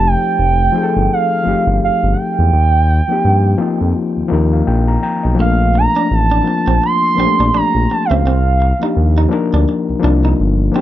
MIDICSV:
0, 0, Header, 1, 6, 480
1, 0, Start_track
1, 0, Key_signature, -2, "major"
1, 0, Tempo, 714286
1, 1697, Time_signature, 4, 2, 24, 8
1, 7266, End_track
2, 0, Start_track
2, 0, Title_t, "Soft synth lead"
2, 0, Program_c, 0, 80
2, 46, Note_on_c, 0, 79, 97
2, 752, Note_off_c, 0, 79, 0
2, 757, Note_on_c, 0, 77, 106
2, 1200, Note_off_c, 0, 77, 0
2, 1239, Note_on_c, 0, 77, 84
2, 1433, Note_on_c, 0, 78, 68
2, 1443, Note_off_c, 0, 77, 0
2, 1462, Note_on_c, 0, 79, 103
2, 1472, Note_off_c, 0, 78, 0
2, 2899, Note_off_c, 0, 79, 0
2, 3633, Note_on_c, 0, 77, 94
2, 3882, Note_on_c, 0, 82, 96
2, 3892, Note_off_c, 0, 77, 0
2, 4125, Note_on_c, 0, 81, 93
2, 4135, Note_off_c, 0, 82, 0
2, 4591, Note_off_c, 0, 81, 0
2, 4604, Note_on_c, 0, 84, 124
2, 5082, Note_on_c, 0, 82, 100
2, 5092, Note_off_c, 0, 84, 0
2, 5323, Note_on_c, 0, 81, 95
2, 5334, Note_off_c, 0, 82, 0
2, 5396, Note_off_c, 0, 81, 0
2, 5408, Note_on_c, 0, 76, 58
2, 5471, Note_on_c, 0, 77, 76
2, 5481, Note_off_c, 0, 76, 0
2, 6175, Note_off_c, 0, 77, 0
2, 7266, End_track
3, 0, Start_track
3, 0, Title_t, "Clean electric guitar"
3, 0, Program_c, 1, 27
3, 3631, Note_on_c, 1, 58, 65
3, 3730, Note_off_c, 1, 58, 0
3, 4008, Note_on_c, 1, 62, 64
3, 4077, Note_off_c, 1, 62, 0
3, 4244, Note_on_c, 1, 62, 65
3, 4314, Note_off_c, 1, 62, 0
3, 4486, Note_on_c, 1, 60, 63
3, 4555, Note_off_c, 1, 60, 0
3, 4836, Note_on_c, 1, 60, 67
3, 4933, Note_off_c, 1, 60, 0
3, 4973, Note_on_c, 1, 62, 65
3, 5040, Note_off_c, 1, 62, 0
3, 5070, Note_on_c, 1, 62, 69
3, 5169, Note_off_c, 1, 62, 0
3, 5451, Note_on_c, 1, 60, 65
3, 5519, Note_off_c, 1, 60, 0
3, 5557, Note_on_c, 1, 60, 77
3, 5654, Note_off_c, 1, 60, 0
3, 5933, Note_on_c, 1, 63, 64
3, 6000, Note_off_c, 1, 63, 0
3, 6167, Note_on_c, 1, 63, 64
3, 6236, Note_off_c, 1, 63, 0
3, 6410, Note_on_c, 1, 62, 63
3, 6478, Note_off_c, 1, 62, 0
3, 6749, Note_on_c, 1, 62, 71
3, 6848, Note_off_c, 1, 62, 0
3, 6886, Note_on_c, 1, 63, 71
3, 6956, Note_off_c, 1, 63, 0
3, 7229, Note_on_c, 1, 60, 69
3, 7266, Note_off_c, 1, 60, 0
3, 7266, End_track
4, 0, Start_track
4, 0, Title_t, "Reed electric piano"
4, 0, Program_c, 2, 4
4, 0, Control_c, 2, 64, 127
4, 0, Note_on_c, 2, 53, 79
4, 0, Note_on_c, 2, 57, 66
4, 0, Note_on_c, 2, 60, 84
4, 0, Note_on_c, 2, 63, 79
4, 0, Note_on_c, 2, 67, 94
4, 0, Note_on_c, 2, 72, 50
4, 393, Note_off_c, 2, 53, 0
4, 400, Note_off_c, 2, 60, 0
4, 404, Note_off_c, 2, 63, 0
4, 409, Note_off_c, 2, 67, 0
4, 418, Note_off_c, 2, 57, 0
4, 486, Note_on_c, 2, 53, 71
4, 492, Note_on_c, 2, 57, 60
4, 501, Note_on_c, 2, 60, 63
4, 509, Note_on_c, 2, 63, 64
4, 517, Note_on_c, 2, 68, 59
4, 558, Note_off_c, 2, 68, 0
4, 560, Note_on_c, 2, 69, 79
4, 904, Note_off_c, 2, 53, 0
4, 908, Note_off_c, 2, 57, 0
4, 912, Note_off_c, 2, 60, 0
4, 916, Note_off_c, 2, 63, 0
4, 941, Note_off_c, 2, 69, 0
4, 965, Note_on_c, 2, 53, 65
4, 974, Note_on_c, 2, 57, 59
4, 979, Note_on_c, 2, 60, 63
4, 990, Note_on_c, 2, 63, 64
4, 995, Note_on_c, 2, 67, 72
4, 1691, Note_off_c, 2, 53, 0
4, 1696, Note_off_c, 2, 57, 0
4, 1698, Note_off_c, 2, 60, 0
4, 1704, Note_off_c, 2, 63, 0
4, 1706, Note_off_c, 2, 67, 0
4, 1707, Control_c, 2, 64, 0
4, 1712, Note_off_c, 2, 72, 0
4, 1828, Control_c, 2, 64, 127
4, 2069, Note_on_c, 2, 53, 59
4, 2077, Note_on_c, 2, 58, 60
4, 2085, Note_on_c, 2, 60, 60
4, 2092, Note_on_c, 2, 63, 63
4, 2099, Note_on_c, 2, 67, 75
4, 2362, Note_off_c, 2, 53, 0
4, 2366, Note_off_c, 2, 58, 0
4, 2370, Note_off_c, 2, 60, 0
4, 2374, Note_off_c, 2, 63, 0
4, 2377, Note_off_c, 2, 67, 0
4, 2403, Note_on_c, 2, 53, 84
4, 2409, Note_on_c, 2, 58, 73
4, 2417, Note_on_c, 2, 60, 69
4, 2426, Note_on_c, 2, 63, 79
4, 2434, Note_on_c, 2, 65, 79
4, 2823, Note_off_c, 2, 53, 0
4, 2826, Note_off_c, 2, 58, 0
4, 2830, Note_off_c, 2, 60, 0
4, 2835, Note_off_c, 2, 63, 0
4, 2838, Note_off_c, 2, 65, 0
4, 2879, Note_on_c, 2, 53, 81
4, 2887, Note_on_c, 2, 58, 74
4, 2898, Note_on_c, 2, 75, 61
4, 2899, Note_on_c, 2, 60, 72
4, 2906, Note_on_c, 2, 63, 76
4, 2915, Note_on_c, 2, 70, 84
4, 3029, Note_off_c, 2, 75, 0
4, 3044, Note_on_c, 2, 77, 60
4, 3133, Note_off_c, 2, 77, 0
4, 3140, Note_on_c, 2, 79, 64
4, 3279, Note_on_c, 2, 82, 58
4, 3301, Note_off_c, 2, 53, 0
4, 3305, Note_off_c, 2, 58, 0
4, 3311, Note_off_c, 2, 60, 0
4, 3315, Note_off_c, 2, 63, 0
4, 3319, Note_off_c, 2, 70, 0
4, 3362, Note_off_c, 2, 79, 0
4, 3370, Note_off_c, 2, 82, 0
4, 3379, Note_on_c, 2, 82, 55
4, 3380, Note_on_c, 2, 79, 63
4, 3513, Note_off_c, 2, 79, 0
4, 3516, Note_on_c, 2, 75, 48
4, 3594, Note_on_c, 2, 53, 80
4, 3601, Note_off_c, 2, 82, 0
4, 3607, Note_on_c, 2, 58, 70
4, 3613, Note_on_c, 2, 60, 76
4, 3621, Note_on_c, 2, 62, 65
4, 3624, Control_c, 2, 64, 0
4, 3627, Note_on_c, 2, 57, 89
4, 3745, Note_off_c, 2, 75, 0
4, 3747, Control_c, 2, 64, 127
4, 4224, Note_off_c, 2, 53, 0
4, 4231, Note_off_c, 2, 58, 0
4, 4234, Note_off_c, 2, 60, 0
4, 4238, Note_off_c, 2, 62, 0
4, 4241, Note_off_c, 2, 57, 0
4, 4322, Note_on_c, 2, 53, 66
4, 4329, Note_on_c, 2, 58, 65
4, 4339, Note_on_c, 2, 60, 56
4, 4346, Note_on_c, 2, 62, 58
4, 4354, Note_on_c, 2, 65, 75
4, 4743, Note_off_c, 2, 53, 0
4, 4746, Note_off_c, 2, 58, 0
4, 4751, Note_off_c, 2, 60, 0
4, 4755, Note_off_c, 2, 62, 0
4, 4758, Note_off_c, 2, 65, 0
4, 4802, Note_on_c, 2, 53, 63
4, 4810, Note_on_c, 2, 58, 55
4, 4817, Note_on_c, 2, 60, 59
4, 4826, Note_on_c, 2, 62, 66
4, 4834, Note_on_c, 2, 67, 54
4, 4877, Note_off_c, 2, 67, 0
4, 4877, Note_on_c, 2, 57, 76
4, 5529, Note_off_c, 2, 53, 0
4, 5534, Note_off_c, 2, 58, 0
4, 5537, Note_off_c, 2, 60, 0
4, 5541, Note_off_c, 2, 62, 0
4, 5546, Control_c, 2, 64, 0
4, 5567, Note_off_c, 2, 57, 0
4, 5668, Control_c, 2, 64, 127
4, 5909, Note_on_c, 2, 53, 48
4, 5913, Note_on_c, 2, 58, 48
4, 5921, Note_on_c, 2, 62, 52
4, 5928, Note_on_c, 2, 63, 53
4, 5938, Note_on_c, 2, 67, 62
4, 6202, Note_off_c, 2, 53, 0
4, 6204, Note_off_c, 2, 58, 0
4, 6208, Note_off_c, 2, 62, 0
4, 6211, Note_off_c, 2, 63, 0
4, 6216, Note_off_c, 2, 67, 0
4, 6238, Note_on_c, 2, 53, 81
4, 6247, Note_on_c, 2, 58, 77
4, 6256, Note_on_c, 2, 62, 77
4, 6261, Note_on_c, 2, 63, 74
4, 6272, Note_on_c, 2, 70, 95
4, 6661, Note_off_c, 2, 53, 0
4, 6665, Note_off_c, 2, 58, 0
4, 6669, Note_off_c, 2, 62, 0
4, 6672, Note_off_c, 2, 63, 0
4, 6677, Note_off_c, 2, 70, 0
4, 6718, Note_on_c, 2, 53, 81
4, 6727, Note_on_c, 2, 58, 68
4, 6734, Note_on_c, 2, 62, 72
4, 6742, Note_on_c, 2, 63, 71
4, 6749, Note_on_c, 2, 65, 85
4, 7140, Note_off_c, 2, 53, 0
4, 7145, Note_off_c, 2, 58, 0
4, 7149, Note_off_c, 2, 62, 0
4, 7152, Note_off_c, 2, 63, 0
4, 7156, Note_off_c, 2, 65, 0
4, 7200, Note_on_c, 2, 53, 73
4, 7209, Note_on_c, 2, 58, 67
4, 7215, Note_on_c, 2, 62, 64
4, 7225, Note_on_c, 2, 63, 68
4, 7234, Note_on_c, 2, 67, 79
4, 7266, Note_off_c, 2, 53, 0
4, 7266, Note_off_c, 2, 58, 0
4, 7266, Note_off_c, 2, 62, 0
4, 7266, Note_off_c, 2, 63, 0
4, 7266, Note_off_c, 2, 67, 0
4, 7266, End_track
5, 0, Start_track
5, 0, Title_t, "Analog synth bass"
5, 0, Program_c, 3, 38
5, 0, Note_on_c, 3, 29, 101
5, 106, Note_off_c, 3, 29, 0
5, 263, Note_on_c, 3, 29, 89
5, 465, Note_off_c, 3, 29, 0
5, 649, Note_on_c, 3, 31, 87
5, 729, Note_off_c, 3, 31, 0
5, 984, Note_on_c, 3, 31, 49
5, 1039, Note_off_c, 3, 31, 0
5, 1123, Note_on_c, 3, 31, 79
5, 1205, Note_off_c, 3, 31, 0
5, 1225, Note_on_c, 3, 31, 45
5, 1279, Note_off_c, 3, 31, 0
5, 1365, Note_on_c, 3, 31, 74
5, 1446, Note_off_c, 3, 31, 0
5, 1605, Note_on_c, 3, 40, 83
5, 1686, Note_off_c, 3, 40, 0
5, 1702, Note_on_c, 3, 39, 96
5, 2025, Note_off_c, 3, 39, 0
5, 2182, Note_on_c, 3, 43, 82
5, 2385, Note_off_c, 3, 43, 0
5, 2562, Note_on_c, 3, 41, 78
5, 2644, Note_off_c, 3, 41, 0
5, 2803, Note_on_c, 3, 39, 45
5, 2841, Note_off_c, 3, 39, 0
5, 2903, Note_on_c, 3, 39, 88
5, 3105, Note_off_c, 3, 39, 0
5, 3143, Note_on_c, 3, 34, 88
5, 3345, Note_off_c, 3, 34, 0
5, 3528, Note_on_c, 3, 35, 82
5, 3608, Note_off_c, 3, 35, 0
5, 3625, Note_on_c, 3, 34, 92
5, 3947, Note_off_c, 3, 34, 0
5, 4107, Note_on_c, 3, 33, 92
5, 4308, Note_off_c, 3, 33, 0
5, 4484, Note_on_c, 3, 34, 79
5, 4566, Note_off_c, 3, 34, 0
5, 4825, Note_on_c, 3, 34, 50
5, 4880, Note_off_c, 3, 34, 0
5, 4968, Note_on_c, 3, 34, 76
5, 5048, Note_off_c, 3, 34, 0
5, 5064, Note_on_c, 3, 34, 41
5, 5119, Note_off_c, 3, 34, 0
5, 5207, Note_on_c, 3, 34, 80
5, 5287, Note_off_c, 3, 34, 0
5, 5448, Note_on_c, 3, 37, 83
5, 5528, Note_off_c, 3, 37, 0
5, 5542, Note_on_c, 3, 36, 93
5, 5865, Note_off_c, 3, 36, 0
5, 6026, Note_on_c, 3, 39, 80
5, 6227, Note_off_c, 3, 39, 0
5, 6408, Note_on_c, 3, 38, 88
5, 6488, Note_off_c, 3, 38, 0
5, 6649, Note_on_c, 3, 36, 38
5, 6686, Note_off_c, 3, 36, 0
5, 6746, Note_on_c, 3, 36, 105
5, 6947, Note_off_c, 3, 36, 0
5, 6988, Note_on_c, 3, 31, 84
5, 7188, Note_off_c, 3, 31, 0
5, 7266, End_track
6, 0, Start_track
6, 0, Title_t, "Muted clean electric guitar strokes"
6, 3866, Note_on_c, 9, 29, 37
6, 3933, Note_off_c, 9, 29, 0
6, 4351, Note_on_c, 9, 29, 37
6, 4418, Note_off_c, 9, 29, 0
6, 4594, Note_on_c, 9, 29, 42
6, 4661, Note_off_c, 9, 29, 0
6, 5318, Note_on_c, 9, 29, 40
6, 5385, Note_off_c, 9, 29, 0
6, 5792, Note_on_c, 9, 29, 39
6, 5859, Note_off_c, 9, 29, 0
6, 6269, Note_on_c, 9, 29, 40
6, 6336, Note_off_c, 9, 29, 0
6, 6510, Note_on_c, 9, 29, 40
6, 6577, Note_off_c, 9, 29, 0
6, 7266, End_track
0, 0, End_of_file